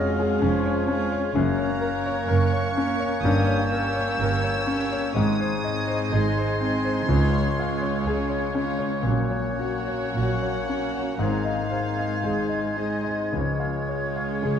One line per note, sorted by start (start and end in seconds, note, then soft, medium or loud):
0.00 0.30 F1 medium
0.00 0.30 F2 medium
0.00 1.32 F2 soft
0.00 0.45 F#3 medium
0.00 0.87 G#3 medium
0.00 1.31 G#3 soft
0.00 0.17 C#4 medium
0.00 0.42 C#4 soft
0.00 0.86 C#4 medium
0.00 1.31 C#4 soft
0.00 0.87 F4 medium
0.00 0.19 G#4 soft
0.00 0.87 G#4 soft
0.00 0.66 C#5 soft
0.00 0.89 C#5 medium
0.00 0.14 D#5 soft
0.00 0.39 F6 medium
0.19 0.57 G#4 soft
0.42 1.23 F1 medium
0.42 1.23 F2 medium
0.42 1.19 F3 soft
0.42 0.80 C#4 soft
0.42 1.32 F4 medium
0.42 1.33 C#5 medium
0.42 1.33 F6 soft
0.66 1.03 C#5 medium
0.88 1.34 G#3 soft
0.88 1.34 C#4 soft
0.88 1.26 C#4 soft
0.88 1.34 F4 medium
0.88 1.35 G#4 soft
1.12 1.36 C#5 soft
1.33 2.17 F#1 medium
1.33 3.20 F#2 medium
1.33 2.17 F#2 medium
1.33 1.71 A#3 medium
1.33 5.12 A#3 medium
1.33 1.70 C#4 medium
1.33 5.12 C#4 medium
1.33 6.14 C#5 soft
1.33 2.26 A#5 medium
1.33 3.24 F#6 medium
1.58 1.96 C#5 soft
1.80 2.74 A#3 medium
1.80 2.74 C#4 medium
1.80 2.20 A#4 soft
1.80 2.75 A#4 soft
1.80 2.75 C#5 soft
2.06 2.44 C#5 medium
2.28 3.11 F#1 medium
2.28 3.11 F#2 medium
2.28 2.67 A#4 soft
2.28 3.24 C#6 medium
2.52 2.91 C#5 soft
2.75 3.22 A#3 soft
2.75 3.22 C#4 soft
2.75 3.15 C#4 soft
2.75 3.24 A#4 soft
2.75 3.22 C#5 soft
3.00 3.24 C#5 soft
3.22 4.07 G1 medium
3.22 4.06 G2 medium
3.22 5.12 G2 medium
3.22 3.60 A#3 medium
3.22 3.70 A#3 soft
3.22 3.60 C#4 medium
3.22 3.70 C#4 soft
3.22 3.71 G4 soft
3.22 3.71 C#5 soft
3.22 3.71 D#6 medium
3.22 5.12 G6 medium
3.47 3.86 C#5 soft
3.70 4.66 A#3 medium
3.70 4.66 C#4 soft
3.70 4.66 G4 medium
3.70 4.11 A#4 soft
3.70 4.66 C#5 soft
3.70 5.12 E6 medium
3.96 4.35 C#5 soft
4.19 5.02 G1 medium
4.19 5.02 G2 medium
4.19 4.59 A#4 medium
4.44 4.82 C#5 soft
4.67 5.14 A#3 soft
4.67 5.06 C#4 soft
4.67 5.15 C#4 soft
4.67 5.15 G4 medium
4.67 5.14 C#5 soft
4.92 5.16 C#5 soft
5.12 6.00 G#1 medium
5.12 5.99 G#2 medium
5.12 7.06 G#2 medium
5.12 8.73 G#3 soft
5.12 5.53 G#3 soft
5.12 5.52 C4 soft
5.12 7.12 D#4 soft
5.12 6.12 D#6 medium
5.12 8.72 G#6 medium
5.40 5.79 C5 soft
5.64 6.60 G#3 soft
5.64 6.60 C4 medium
5.64 6.61 D#4 medium
5.64 6.04 D#5 soft
5.64 6.60 D#5 soft
5.88 6.27 C5 soft
6.12 6.96 G#1 medium
6.12 6.96 G#2 medium
6.12 6.52 G#4 soft
6.12 7.09 C5 soft
6.12 8.56 C6 medium
6.38 6.76 C5 soft
6.61 7.09 G#3 soft
6.61 7.00 C4 soft
6.61 7.09 C4 soft
6.61 7.09 D#4 soft
6.61 7.09 D#5 soft
6.85 7.10 C5 soft
7.08 9.02 C#2 medium
7.08 7.93 C#2 medium
7.08 7.93 C#3 medium
7.08 7.46 G#3 soft
7.08 7.57 G#3 soft
7.08 7.58 C#4 soft
7.08 7.46 F4 medium
7.08 7.56 F4 soft
7.08 8.78 F4 soft
7.08 7.55 C#5 soft
7.08 10.90 C#5 soft
7.33 7.72 C#5 soft
7.56 8.53 G#3 soft
7.56 8.53 C#4 soft
7.56 8.53 F4 soft
7.56 8.53 C#5 soft
7.56 7.98 F5 soft
7.82 8.21 C#5 soft
8.06 8.92 C#2 medium
8.06 8.92 C#3 medium
8.06 8.46 G#4 soft
8.30 8.70 C#5 soft
8.54 9.05 G#3 soft
8.54 9.05 C#4 soft
8.54 8.96 C#4 soft
8.54 9.05 F4 soft
8.54 9.05 C#5 soft
8.79 9.06 C#5 soft
9.02 10.03 A#1 medium
9.02 11.16 A#2 soft
9.02 10.03 A#2 medium
9.02 9.50 F#3 soft
9.02 12.26 A#3 soft
9.02 9.50 C#4 soft
9.02 10.14 C#5 medium
9.02 11.22 F#6 medium
9.07 11.24 C#4 soft
9.30 9.78 C#5 soft
9.59 10.69 F#3 soft
9.59 10.69 C#4 soft
9.59 10.06 F#4 soft
9.59 10.67 F#4 soft
9.59 10.67 C#5 soft
9.88 10.33 C#5 soft
10.17 11.07 A#1 soft
10.17 11.07 A#2 medium
10.17 10.60 F#4 soft
10.17 11.22 F#5 medium
10.42 10.85 C#5 soft
10.68 11.21 F#3 soft
10.68 11.11 C#4 soft
10.68 11.21 C#4 soft
10.68 11.19 F#4 soft
10.68 11.19 C#5 soft
10.95 11.21 C#5 soft
11.19 12.10 G#1 soft
11.19 13.29 G#2 soft
11.19 12.09 G#2 medium
11.19 11.61 D#3 soft
11.19 11.70 G#3 soft
11.19 11.71 C4 soft
11.19 11.61 C4 soft
11.19 11.68 D#4 soft
11.19 11.68 G#4 soft
11.19 12.79 F5 medium
11.19 14.59 G#6 soft
11.23 13.34 D#4 soft
11.23 13.32 C5 soft
11.45 11.87 D#5 soft
11.69 12.77 G#3 soft
11.69 12.77 C4 soft
11.69 12.76 D#4 soft
11.69 12.75 G#4 soft
11.69 12.13 C5 soft
11.98 12.41 D#5 soft
12.23 13.20 G#1 soft
12.23 13.19 G#2 medium
12.23 14.59 G#3 soft
12.23 12.68 G#4 soft
12.49 12.95 D#5 soft
12.77 13.34 G#3 soft
12.77 13.34 C4 soft
12.77 13.23 D#4 soft
12.77 13.34 D#4 soft
12.77 13.33 G#4 soft
12.77 13.35 D#5 soft
13.04 13.34 D#5 soft
13.32 14.59 C#2 soft
13.32 14.30 C#2 medium
13.32 14.30 C#3 soft
13.32 13.78 F3 soft
13.32 13.78 C#4 soft
13.32 14.32 F4 soft
13.32 14.59 C#5 medium
13.38 14.59 C#5 soft
13.60 14.05 F5 soft
13.89 14.59 G#3 soft
13.89 14.59 C#4 soft
13.89 14.59 F4 soft
13.89 14.59 G#4 soft
13.89 14.33 C#5 soft
14.16 14.59 F5 soft
14.43 14.59 C#2 soft
14.43 14.59 C#3 soft
14.43 14.59 G#4 soft
14.47 14.59 F4 soft